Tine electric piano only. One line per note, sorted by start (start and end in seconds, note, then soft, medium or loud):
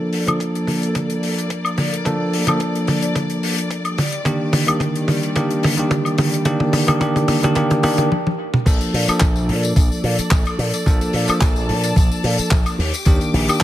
0.00 0.24 F3 medium
0.00 0.24 A#3 medium
0.00 0.24 D4 medium
0.00 0.24 A4 medium
0.26 2.02 F3 medium
0.26 2.02 A#3 medium
0.26 2.03 D4 medium
0.26 2.03 A4 medium
2.05 2.44 F3 medium
2.05 2.44 A#3 medium
2.05 2.44 D4 medium
2.05 2.45 A4 medium
2.47 3.96 F3 medium
2.47 3.97 A#3 medium
2.47 3.97 D4 medium
2.47 3.97 A4 medium
4.25 4.64 D#3 medium
4.25 4.64 A#3 medium
4.25 4.65 D4 medium
4.25 4.65 G4 medium
4.67 5.33 D#3 medium
4.67 5.33 A#3 medium
4.67 5.34 D4 medium
4.67 5.34 G4 medium
5.35 5.74 D#3 medium
5.35 5.74 A#3 medium
5.35 5.75 D4 medium
5.35 5.75 G4 medium
5.77 6.43 D#3 medium
5.77 6.44 A#3 medium
5.77 6.44 D4 medium
5.77 6.44 G4 medium
6.45 6.84 D#3 medium
6.45 6.85 A#3 medium
6.45 6.85 D4 medium
6.45 6.85 G4 medium
6.87 6.98 D#3 medium
6.87 6.99 A#3 medium
6.87 6.99 D4 medium
6.87 6.99 G4 medium
7.00 7.39 D#3 medium
7.00 7.40 A#3 medium
7.00 7.40 D4 medium
7.00 7.40 G4 medium
7.42 7.54 D#3 medium
7.42 7.54 A#3 medium
7.42 7.54 D4 medium
7.42 7.55 G4 medium
7.56 7.81 D#3 medium
7.56 7.81 A#3 medium
7.56 7.82 D4 medium
7.56 7.82 G4 medium
7.83 8.09 D#3 medium
7.83 8.09 A#3 medium
7.83 8.09 D4 medium
7.83 8.09 G4 medium
8.66 9.05 F3 medium
8.66 9.05 A#3 medium
8.66 9.05 D4 medium
8.66 9.05 A4 medium
9.07 10.83 F3 medium
9.07 10.83 A#3 medium
9.07 10.83 D4 medium
9.07 10.84 A4 medium
10.86 11.25 F3 medium
10.86 11.25 A#3 medium
10.86 11.25 D4 medium
10.86 11.25 A4 medium
11.28 12.77 F3 medium
11.28 12.77 A#3 medium
11.28 12.78 D4 medium
11.28 12.78 A4 medium
13.06 13.45 D#3 medium
13.06 13.45 A#3 medium
13.06 13.45 D4 medium
13.06 13.45 G4 medium
13.48 13.63 D#3 medium
13.48 13.63 A#3 medium
13.48 13.63 D4 medium
13.48 13.63 G4 medium